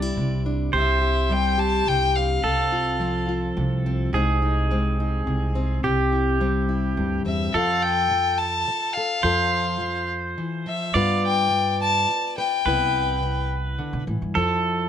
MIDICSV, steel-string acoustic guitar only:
0, 0, Header, 1, 3, 480
1, 0, Start_track
1, 0, Key_signature, 0, "major"
1, 0, Tempo, 567644
1, 622, Time_signature, 3, 2, 24, 8
1, 12590, End_track
2, 0, Start_track
2, 0, Title_t, "Steel-string acoustic guitar"
2, 0, Program_c, 0, 25
2, 0, Note_on_c, 0, 48, 67
2, 0, Note_on_c, 0, 55, 60
2, 0, Note_on_c, 0, 67, 61
2, 19, Note_on_c, 0, 64, 44
2, 131, Note_off_c, 0, 48, 0
2, 141, Note_on_c, 0, 48, 56
2, 388, Note_on_c, 0, 62, 53
2, 593, Note_off_c, 0, 55, 0
2, 596, Note_off_c, 0, 62, 0
2, 603, Note_off_c, 0, 48, 0
2, 613, Note_off_c, 0, 67, 0
2, 613, Note_on_c, 0, 48, 63
2, 619, Note_off_c, 0, 64, 0
2, 623, Note_on_c, 0, 67, 59
2, 850, Note_off_c, 0, 67, 0
2, 860, Note_on_c, 0, 67, 59
2, 1098, Note_on_c, 0, 55, 64
2, 1106, Note_on_c, 0, 60, 56
2, 1324, Note_off_c, 0, 67, 0
2, 1334, Note_on_c, 0, 67, 61
2, 1575, Note_off_c, 0, 48, 0
2, 1582, Note_on_c, 0, 43, 57
2, 1824, Note_off_c, 0, 60, 0
2, 1827, Note_on_c, 0, 60, 57
2, 2028, Note_off_c, 0, 55, 0
2, 2055, Note_off_c, 0, 67, 0
2, 2058, Note_on_c, 0, 48, 68
2, 2059, Note_off_c, 0, 43, 0
2, 2065, Note_on_c, 0, 69, 62
2, 2303, Note_on_c, 0, 65, 55
2, 2532, Note_on_c, 0, 53, 66
2, 2537, Note_off_c, 0, 48, 0
2, 2539, Note_off_c, 0, 60, 0
2, 2542, Note_on_c, 0, 60, 56
2, 2770, Note_off_c, 0, 65, 0
2, 2780, Note_on_c, 0, 65, 55
2, 3018, Note_on_c, 0, 48, 58
2, 3262, Note_off_c, 0, 60, 0
2, 3265, Note_on_c, 0, 60, 56
2, 3468, Note_off_c, 0, 65, 0
2, 3470, Note_off_c, 0, 69, 0
2, 3489, Note_off_c, 0, 48, 0
2, 3492, Note_off_c, 0, 53, 0
2, 3492, Note_on_c, 0, 48, 68
2, 3500, Note_on_c, 0, 56, 55
2, 3503, Note_off_c, 0, 60, 0
2, 3507, Note_on_c, 0, 60, 58
2, 3511, Note_on_c, 0, 63, 57
2, 3517, Note_on_c, 0, 68, 67
2, 3728, Note_off_c, 0, 63, 0
2, 3738, Note_on_c, 0, 63, 53
2, 3969, Note_off_c, 0, 56, 0
2, 3979, Note_on_c, 0, 56, 62
2, 3983, Note_off_c, 0, 60, 0
2, 3986, Note_on_c, 0, 60, 60
2, 4216, Note_off_c, 0, 63, 0
2, 4228, Note_on_c, 0, 63, 53
2, 4449, Note_off_c, 0, 48, 0
2, 4459, Note_on_c, 0, 48, 58
2, 4692, Note_off_c, 0, 60, 0
2, 4696, Note_on_c, 0, 60, 58
2, 4908, Note_off_c, 0, 56, 0
2, 4912, Note_off_c, 0, 63, 0
2, 4916, Note_off_c, 0, 68, 0
2, 4924, Note_off_c, 0, 48, 0
2, 4934, Note_on_c, 0, 48, 71
2, 4938, Note_on_c, 0, 67, 63
2, 5177, Note_on_c, 0, 64, 50
2, 5416, Note_on_c, 0, 55, 62
2, 5418, Note_off_c, 0, 60, 0
2, 5421, Note_on_c, 0, 60, 57
2, 5644, Note_off_c, 0, 64, 0
2, 5655, Note_on_c, 0, 64, 51
2, 5894, Note_off_c, 0, 48, 0
2, 5895, Note_on_c, 0, 43, 60
2, 6127, Note_off_c, 0, 60, 0
2, 6137, Note_on_c, 0, 60, 54
2, 6346, Note_off_c, 0, 64, 0
2, 6347, Note_off_c, 0, 55, 0
2, 6347, Note_off_c, 0, 60, 0
2, 6374, Note_on_c, 0, 53, 62
2, 6375, Note_off_c, 0, 43, 0
2, 6376, Note_off_c, 0, 67, 0
2, 6381, Note_on_c, 0, 65, 58
2, 6384, Note_on_c, 0, 69, 63
2, 6854, Note_off_c, 0, 53, 0
2, 7580, Note_off_c, 0, 69, 0
2, 7588, Note_on_c, 0, 69, 70
2, 7793, Note_off_c, 0, 69, 0
2, 7808, Note_on_c, 0, 53, 69
2, 7812, Note_off_c, 0, 65, 0
2, 7815, Note_on_c, 0, 65, 60
2, 7819, Note_on_c, 0, 69, 66
2, 8290, Note_off_c, 0, 53, 0
2, 8775, Note_on_c, 0, 52, 61
2, 9015, Note_on_c, 0, 53, 63
2, 9016, Note_off_c, 0, 52, 0
2, 9228, Note_off_c, 0, 65, 0
2, 9230, Note_off_c, 0, 69, 0
2, 9250, Note_on_c, 0, 43, 66
2, 9256, Note_off_c, 0, 53, 0
2, 9257, Note_on_c, 0, 59, 58
2, 9262, Note_on_c, 0, 65, 58
2, 9269, Note_on_c, 0, 71, 66
2, 9725, Note_off_c, 0, 43, 0
2, 10459, Note_off_c, 0, 71, 0
2, 10469, Note_on_c, 0, 71, 72
2, 10670, Note_off_c, 0, 59, 0
2, 10671, Note_off_c, 0, 65, 0
2, 10675, Note_off_c, 0, 71, 0
2, 10707, Note_on_c, 0, 48, 72
2, 10710, Note_on_c, 0, 59, 59
2, 10715, Note_on_c, 0, 64, 57
2, 10724, Note_on_c, 0, 71, 66
2, 11175, Note_off_c, 0, 48, 0
2, 11657, Note_on_c, 0, 50, 61
2, 11898, Note_off_c, 0, 50, 0
2, 11903, Note_on_c, 0, 52, 59
2, 12116, Note_off_c, 0, 59, 0
2, 12119, Note_off_c, 0, 64, 0
2, 12123, Note_off_c, 0, 71, 0
2, 12135, Note_on_c, 0, 53, 72
2, 12141, Note_off_c, 0, 52, 0
2, 12146, Note_on_c, 0, 64, 59
2, 12151, Note_on_c, 0, 69, 64
2, 12590, Note_off_c, 0, 53, 0
2, 12590, Note_off_c, 0, 64, 0
2, 12590, Note_off_c, 0, 69, 0
2, 12590, End_track
3, 0, Start_track
3, 0, Title_t, "Muted steel-string acoustic guitar strokes"
3, 6850, Note_on_c, 9, 29, 68
3, 6934, Note_off_c, 9, 29, 0
3, 7337, Note_on_c, 9, 29, 68
3, 7421, Note_off_c, 9, 29, 0
3, 8293, Note_on_c, 9, 29, 68
3, 8377, Note_off_c, 9, 29, 0
3, 9734, Note_on_c, 9, 29, 68
3, 9819, Note_off_c, 9, 29, 0
3, 10221, Note_on_c, 9, 29, 60
3, 10306, Note_off_c, 9, 29, 0
3, 11183, Note_on_c, 9, 29, 72
3, 11268, Note_off_c, 9, 29, 0
3, 12590, End_track
0, 0, End_of_file